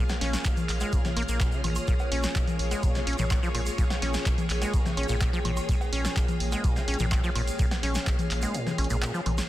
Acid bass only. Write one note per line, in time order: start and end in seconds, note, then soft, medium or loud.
0.21 0.47 C#4 medium
0.45 0.55 A#2 medium
0.81 0.94 G#3 medium
0.93 1.06 A#2 medium
1.05 1.11 C#3 loud
1.17 1.23 A#3 loud
1.29 1.42 A#3 medium
1.40 1.54 A#2 medium
1.52 1.62 C#3 medium
1.64 1.71 A#1 medium
1.88 1.94 A#2 medium
2.12 2.37 C#4 medium
2.35 2.45 A#2 medium
2.71 2.85 G#3 medium
2.83 2.97 A#2 medium
2.95 3.02 C#3 loud
3.07 3.17 C#4 medium
3.19 3.25 A#2 loud
3.31 3.41 A#2 medium
3.43 3.49 F3 loud
3.55 3.61 A#2 medium
3.78 3.85 A#2 medium
4.02 4.27 C#4 medium
4.26 4.36 A#2 medium
4.62 4.75 G#3 medium
4.74 4.87 A#2 medium
4.85 4.92 C#3 loud
4.97 5.07 C#4 medium
5.09 5.16 A#2 loud
5.21 5.31 A#2 medium
5.33 5.40 F3 loud
5.45 5.52 A#2 medium
5.69 5.75 A#2 medium
5.93 6.18 C#4 medium
6.16 6.26 A#2 medium
6.52 6.66 G#3 medium
6.64 6.78 A#2 medium
6.76 6.83 C#3 loud
6.88 6.98 C#4 medium
7.00 7.06 A#2 loud
7.12 7.22 A#2 medium
7.24 7.30 F3 loud
7.36 7.42 A#2 medium
7.59 7.66 A#2 medium
7.83 8.08 C#4 medium
8.07 8.17 A#2 medium
8.43 8.56 G#3 medium
8.55 8.68 A#2 medium
8.67 8.73 C#3 loud
8.78 8.88 C#4 medium
8.90 8.97 A#2 loud
9.02 9.12 A#2 medium
9.14 9.21 F3 loud
9.26 9.33 A#2 medium